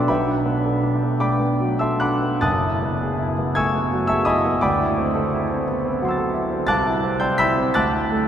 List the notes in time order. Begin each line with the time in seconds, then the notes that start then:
Already playing: F#3 A3 B3 D4 A4 D5 E5 F#5 G5 A5 B5 C6 D6 E6 F#6
0.08 B1 B4 E5 G5 B5
0.28 D4
0.46 B3
0.64 A4
0.84 D4
1.04 B3
1.20 A3 D5 G5 B5 D6
1.40 B3
1.60 F#3
1.79 A4 E5 A5 C6 E6
2.00 D4 F#5 B5 D6 F#6
2.22 B3
2.41 F#1 F#2 A5 D#6 F#6 A6
2.62 E4
2.82 B3
3.02 G#4
3.19 E4
3.39 B3
3.55 A3 G#5 C#6 E6 G#6
3.75 B3
3.93 F#3
4.07 G#4 E5 A5 C#6 E6
4.25 E4 D#5 G#5 B5 D#6
4.45 B3
4.61 D2 D5 G5 B5 D6
4.81 E4
4.98 C4
5.15 A4
5.33 E4
5.50 C4
5.68 B3
5.85 C4
6.02 F#3 F#5 C6
6.08 E6 A6
6.18 A4
6.34 E4
6.51 C4
6.67 C2 A5 D6 F#6 A6
6.86 E4
7.03 C4
7.20 D5 G5 C6 E6 G6
7.38 E4 B5 E6 G6 B6
7.58 C4
7.74 D2 A5 D6 F#6 A6
7.94 E4
8.12 A3